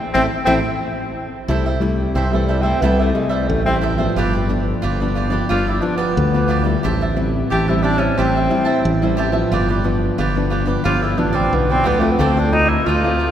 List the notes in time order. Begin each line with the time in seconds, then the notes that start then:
0.14 A1 A3 C4 E4 A4 C5 E5
0.45 A1 A3 C4 E4 A4 C5 E5
1.48 C2 C3 G3 A3 E4 A4 C5 E5
1.66 A4 C5 E5
1.80 G3 A3 E4, muted cavaquinho stroke
2.15 C2 G2 C4 E4 A4 C5 E5
2.33 E3 G3 A3 E4 A4 C5 E5
2.47 G3 E4 A4 C5 E5
2.62 G3 A3 C4 E4 A4 C5 E5
2.82 C2 C3 G3 A3 B3 E4 A4 C5 E5
3.00 A3 A4 C5 E5
3.14 G3 G#3 A3 E4, muted cavaquinho stroke
3.29 G3 A4 C5 E5
3.49 A1 G2 A3
3.66 G3 A3 C4 E4 A4 C5 E5
3.81 E4 A4 C5 E5
3.97 F3 B3 D4 A4 C5 E5
4.16 G1 G2 F4 G4 B4 D5
4.33 G4 B4 D5
4.49 F3 B3 D4, muted cavaquinho stroke
4.82 G1 D3 F4 G4 B4 D5
5.00 F3 B3 D4 G4 B4 D5
5.15 F4 G4 B4 D5
5.30 F3 B3 D4 G4 B4 D5
5.49 G1 G2 F3 B3 D4 F4 G4 B4 D5
5.67 E4 G4 B4 D5
5.81 F3 B3 D4, muted cavaquinho stroke
5.97 B3 G4 B4 D5
6.17 D2 D3
6.34 F3 B3 D4 G4 B4 D5
6.48 F4 G4 B4 D5
6.64 G3 E4 G4 B4 D5
6.83 A1 A2 G4 C5 E5 A5
7.01 C5 E5 A5
7.16 G3 C4 E4, muted cavaquinho stroke
7.50 A1 E3 G4 C5 E5 A5
7.68 G3 C4 E4 C5 E5 A5
7.82 D4 G4 C5 E5 A5
7.98 C#4 C5 E5 A5
8.18 A1 A2 G3 C4 E4 G4 C5 E5 A5
8.36 C5 E5 A5
8.50 G3 C4 E4, muted cavaquinho stroke
8.65 C5 E5 A5
8.84 A1 E3
9.02 G3 C4 E4 C5 E5 A5
9.17 G4 C5 E5 A5
9.32 F3 B3 D4 C5 E5 A5
9.52 G1 G2 F4 G4 B4 D5
9.68 G4 B4 D5
9.84 F3 B3 D4, muted cavaquinho stroke
10.18 G1 D3 F4 G4 B4 D5
10.35 F3 B3 D4 G4 B4 D5
10.50 F4 G4 B4 D5
10.66 F3 B3 D4 G4 B4 D5
10.84 G1 G2 F3 B3 D4 F4 G4 B4 D5
11.02 E4 G4 B4 D5
11.17 A1 F3 B3 D4, muted cavaquinho stroke
11.33 C4 G4 B4 D5
11.53 B1 D3 B3
11.70 F3 B3 C4 D4 G4 B4 D5
11.84 D2 B3 F4 G4 B4 D5
11.99 A3 C4 F4 G4 B4 D5
12.11 B3
12.19 D2 D3 C4 F4 A4 C5 D5
12.37 D4 A4 C5 D5
12.52 A3 C4 D#4 F4, muted cavaquinho stroke
12.69 E4
12.86 D2 A2 F4 A4 C5 D5
13.04 A3 C4 F4 A4 C5 D5
13.19 F4 A4 C5 D5